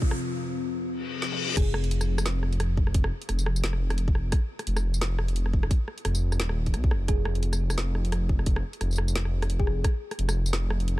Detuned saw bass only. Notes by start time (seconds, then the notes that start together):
1.57 F1
3.29 F1
4.67 F1
6.05 F1
6.39 D#1
6.74 C2
6.91 F1
7.08 F1
8.81 F1
10.18 F1